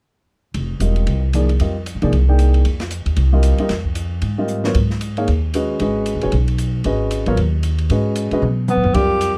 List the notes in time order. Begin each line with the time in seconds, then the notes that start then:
0.54 F1, ride
0.80 E1 G3 C4 F4 A#4 D#5, hi-hat pedal, ride
0.96 ride
1.07 C2, ride
1.33 F3 A#3 D#4 G#4 D5, hi-hat pedal, ride
1.49 ride
1.60 F2 G3 C4 F4 A#4 D#5, ride
1.86 hi-hat pedal, ride
1.95 G#2
2.02 C3 F3 A#3 D#4 G#4 D5, ride
2.12 C2, ride
2.28 A#3 D#4 G#4 D5 G5
2.39 hi-hat pedal, ride
2.54 ride
2.65 F2, ride
2.80 snare, ride
2.91 hi-hat pedal, ride
3.06 D#2, ride
3.16 C2, ride
3.33 G3 C4 F4 A#4 D#5
3.43 hi-hat pedal, ride
3.58 G3 C4 F4 A#4 D#5, ride
3.69 F2, snare, ride
3.85 kick
3.95 hi-hat pedal, ride
4.22 G#2, ride
4.38 G3 C4 F4 A#4 D#5
4.48 hi-hat pedal
4.64 F#3 B3 F4 A#4 C#5, snare
4.75 G#2, kick, ride
4.90 snare
5.01 hi-hat pedal, ride
5.17 A#3 D#4 G#4 C#5 F5, ride
5.28 D#2, ride
5.54 G#3 C#4 F#4 B4 D#5, hi-hat pedal, ride
5.80 G#1 G#3 C#4 F#4 B4 D#5, ride
6.06 hi-hat pedal, ride
6.15 A#1
6.21 A1 G#3 C#4 F#4 B4 C#5, ride
6.32 B1, ride
6.48 ride
6.58 hi-hat pedal, ride
6.84 G#1 G#3 C#4 F#4 B4 D#5, ride
7.11 hi-hat pedal, ride
7.26 A1 F#3 B3 F4 A#4 C#5, ride
7.37 D#2, ride
7.63 hi-hat pedal, ride
7.78 ride
7.90 G#2 G#3 C#4 F#4 B4 D#5, ride
8.16 hi-hat pedal, ride
8.31 A2 G#3 C#4 F#4 B4 D#5, ride
8.42 B2, high tom
8.68 B3, hi-hat pedal, high tom
8.77 A#2
8.84 F#2, floor tom
8.94 F2 G3 C4 F4 G4 A#4 D5, kick, ride
9.21 hi-hat pedal, ride